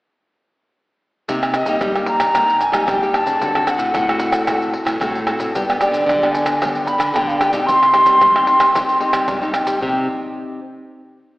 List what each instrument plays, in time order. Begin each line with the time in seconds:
1.28 nylon-string guitar C3 A#3 D#4 G4, pandeiro, maracas, surdo
1.43 pandeiro, tamborim, maracas
1.54 ocarina D#5, pandeiro, tamborim, maracas
1.66 nylon-string guitar G3 A#3 D#4 G4, pandeiro, maracas, surdo
1.81 nylon-string guitar G2 G3, pandeiro, tamborim, maracas, surdo
1.96 nylon-string guitar A#3 D#4 G4, pandeiro, tamborim, maracas
2.06 ocarina A#5, pandeiro, surdo
2.20 pandeiro, tamborim, maracas, surdo
2.35 nylon-string guitar C3 A#3 D#4 G4, pandeiro, tamborim, maracas, surdo
2.50 pandeiro, maracas
2.61 ocarina G#5, pandeiro, maracas
2.72 nylon-string guitar G3 A#3 D#4 G4, pandeiro, tamborim, maracas, surdo
2.87 nylon-string guitar G2 G3, ocarina G5, pandeiro, tamborim, maracas, surdo
3.02 nylon-string guitar A#3 D#4 G4, pandeiro, maracas
3.13 ocarina A5, pandeiro, tamborim
3.26 nylon-string guitar C#3, pandeiro, maracas, surdo
3.41 nylon-string guitar D3 C4 F#4 A4, pandeiro, maracas, surdo
3.55 nylon-string guitar C4 F#4 A4, pandeiro, tamborim, maracas
3.67 nylon-string guitar C4 F#4 A4, ocarina F#5, pandeiro, tamborim, maracas
3.78 nylon-string guitar A2, pandeiro, maracas, surdo
3.94 nylon-string guitar A2 C4 F#4 A4, pandeiro, tamborim, maracas, surdo
4.09 nylon-string guitar C4 F#4 A4, pandeiro, tamborim, maracas
4.19 pandeiro, maracas
4.32 pandeiro, tamborim, maracas, surdo
4.47 nylon-string guitar D3 C4 F#4 A4, pandeiro, tamborim, maracas, surdo
4.62 pandeiro, maracas
4.74 pandeiro
4.85 nylon-string guitar A2, pandeiro, tamborim, maracas, surdo
5.00 nylon-string guitar A2 C4 F#4 A4, pandeiro, tamborim, maracas, surdo
5.15 pandeiro, maracas
5.27 nylon-string guitar C4 F#4 A4, pandeiro, tamborim
5.39 nylon-string guitar A2, pandeiro, maracas, surdo
5.54 nylon-string guitar G2 G3 B3 D4 G4, pandeiro, maracas, surdo
5.69 nylon-string guitar B3 D4 G4, pandeiro, tamborim, maracas
5.81 nylon-string guitar B3 D4 G4, ocarina D5, pandeiro, tamborim, maracas
5.91 nylon-string guitar D3, pandeiro, maracas, surdo
6.06 nylon-string guitar D3, pandeiro, tamborim, maracas, surdo
6.22 nylon-string guitar B3 D4 G4, pandeiro, tamborim, maracas
6.32 ocarina G#5, pandeiro, maracas, surdo
6.46 pandeiro, tamborim, maracas, surdo
6.61 nylon-string guitar G3 B3 D4 G4, ocarina G5, pandeiro, tamborim, maracas, surdo
6.74 ocarina G5, pandeiro, maracas
6.87 ocarina B5, pandeiro, maracas
6.98 nylon-string guitar D3, pandeiro, tamborim, maracas, surdo
7.13 nylon-string guitar D3 B3 D4 G4, ocarina G5, pandeiro, tamborim, maracas, surdo
7.27 ocarina F5, pandeiro, maracas
7.38 nylon-string guitar B3 D4 G4, ocarina G5, pandeiro, tamborim, maracas
7.52 nylon-string guitar B2 C4 D#4 G4, pandeiro, maracas, surdo
7.66 nylon-string guitar C3, ocarina C6, pandeiro, maracas, surdo
7.83 pandeiro, tamborim, maracas
7.94 nylon-string guitar C4 D#4 G4, pandeiro, tamborim
8.06 nylon-string guitar G3, pandeiro, maracas, surdo
8.21 nylon-string guitar G2 G3, pandeiro, tamborim, maracas, surdo
8.35 nylon-string guitar C4 D#4 G4, pandeiro, tamborim, maracas
8.47 pandeiro, surdo
8.59 nylon-string guitar C4 D#4 G4, pandeiro, tamborim, maracas, surdo
8.75 nylon-string guitar C3 C4 D#4 G4, pandeiro, tamborim, maracas, surdo
8.89 pandeiro, maracas
9.00 nylon-string guitar C4 D#4 G4, pandeiro
9.13 nylon-string guitar G3, pandeiro, tamborim, maracas, surdo
9.27 nylon-string guitar G2 G3, pandeiro, tamborim, maracas, surdo
9.41 nylon-string guitar C4 D#4 G4, pandeiro, maracas
9.54 pandeiro, tamborim, maracas
9.67 nylon-string guitar G3, pandeiro, maracas, surdo
9.80 nylon-string guitar C3 C4 D#4 G4, surdo